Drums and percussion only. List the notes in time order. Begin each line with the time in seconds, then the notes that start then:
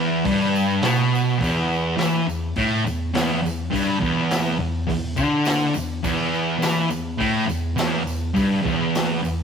0.25 kick, open hi-hat, tambourine
0.41 tambourine
0.55 tambourine
0.82 snare, open hi-hat, tambourine
1.01 tambourine
1.15 tambourine
1.41 kick, open hi-hat, tambourine
1.73 tambourine
1.98 snare, open hi-hat, tambourine
2.29 tambourine
2.56 kick, open hi-hat, tambourine
2.87 tambourine
3.15 snare, open hi-hat, tambourine
3.46 tambourine
3.73 kick, open hi-hat, tambourine
4.02 kick, tambourine
4.31 snare, open hi-hat, tambourine
4.89 kick, open hi-hat, tambourine
5.17 kick, tambourine
5.45 snare, open hi-hat, tambourine
5.74 tambourine
6.04 kick, open hi-hat, tambourine
6.34 tambourine
6.62 snare, open hi-hat, tambourine
6.90 tambourine
7.20 kick, open hi-hat, tambourine
7.49 tambourine
7.78 snare, open hi-hat, tambourine
8.07 tambourine
8.36 kick, open hi-hat, tambourine
8.65 kick, tambourine
8.95 snare, open hi-hat, tambourine
9.25 tambourine